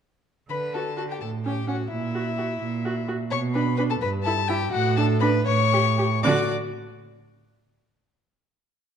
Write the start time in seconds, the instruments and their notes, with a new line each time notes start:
0.49 cello D3, violin B4 B5
0.73 viola F#4, violin A4 A5
0.97 viola F#4, violin A4 A5
1.09 violin G4 G5
1.21 cello A2, violin A4 A5
1.45 viola C#4, violin G4 G5
1.68 viola C#4, violin F#4 F#5
1.91 cello A#2, violin E4 E5
2.15 viola F#4
2.38 viola F#4
2.61 cello A#2
2.85 viola F#4
3.08 viola F#4
3.31 cello B2, violin C#5 C#6
3.54 viola D4, violin B4 B5
3.77 viola D4, violin B4 B5
3.90 violin A4 A5
4.01 cello G2, violin B4 B5
4.24 viola E4, violin A4 A5
4.48 viola E4, violin G4 G5
4.72 cello A2, violin F#4 F#5
4.97 viola D4, violin A4 A5
5.20 viola D4, violin B4 B5
5.47 cello A2, violin C#5 C#6
5.73 viola G4
5.98 viola G4
6.23 cello D3, viola F#4, violin D5 D6